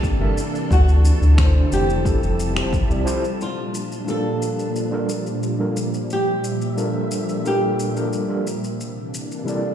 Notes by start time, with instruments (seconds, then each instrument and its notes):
Already playing: string machine C3 E3 A#3 D4 A4, nylon-string guitar G4, synth texture A5
0.03 kick, shaker
0.19 analog synth bass G1, tine electric piano C3 G3 D4 A4 A#4 E5
0.38 shaker
0.55 shaker
0.71 analog synth bass D2, string machine C3 A3, nylon-string guitar F#4, kick, shaker
0.89 shaker
1.05 shaker
1.21 analog synth bass D2, shaker
1.36 tine electric piano D3 D4 E4 F#4 C5, finger snap, kick, shaker
1.72 analog synth bass F1, nylon-string guitar G4, shaker
1.90 shaker
2.04 tine electric piano F3 C4 E4 G4 A4, string machine F3 G3 E4, kick, shaker
2.23 analog synth bass F1, shaker
2.40 shaker
2.55 tine electric piano F3 C4 E4 G4 C5, finger snap, shaker
2.73 kick, shaker
2.89 analog synth bass C2, tine electric piano F3 C4 E4 G4 D5, shaker
3.05 tine electric piano F3 C4 E4 G4 C5, shaker
3.25 shaker
3.40 string machine A#2 F3 G3 D4, nylon-string guitar F4, shaker
3.75 shaker
3.92 shaker
4.05 tine electric piano G3 D4 F4 A4, shaker
4.10 tine electric piano A#3, nylon-string guitar A4
4.42 shaker
4.59 shaker
4.76 shaker
4.91 tine electric piano G3 D4 F4 A4 A#4
5.09 shaker
5.27 shaker
5.43 shaker
5.58 tine electric piano G3 D4 F4 A4 A#4
5.77 shaker
5.94 shaker
6.10 nylon-string guitar G4, string machine E5, shaker
6.44 shaker
6.62 shaker
6.76 tine electric piano G3 D4 F4 A4 A#4, shaker
7.11 shaker
7.29 shaker
7.44 tine electric piano G3 D4 F4 A4 A#4, nylon-string guitar G4, shaker
7.79 shaker
7.94 tine electric piano G3 D4 F4 A4 A#4, shaker
8.13 shaker
8.28 tine electric piano G3 D4 F4 A4 A#4
8.47 shaker
8.64 shaker
8.79 string machine C3 E3 A#3 D4, shaker
9.14 shaker
9.32 shaker
9.44 tine electric piano C3 G3 E4 A4, shaker
9.48 tine electric piano A#4 D5